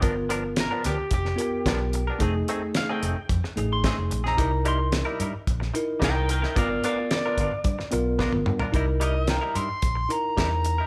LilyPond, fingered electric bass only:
\new Staff \with { instrumentName = "Fingered electric bass" } { \clef bass \time 4/4 \key g \dorian \tempo 4 = 110 g,,4. d,16 r16 f,,8 r8 b,,4 | f,,8 r4 f,,16 r16 f,16 r16 a,,8. f,,16 bes,,8 | c,4. g,16 r16 bes,,8 r8 c,4 | g,,8 r4 g,,16 r16 g,16 r16 b,,8. g,,16 g,8 |
c,4. g,16 r16 bes,,8 r8 e,4 | }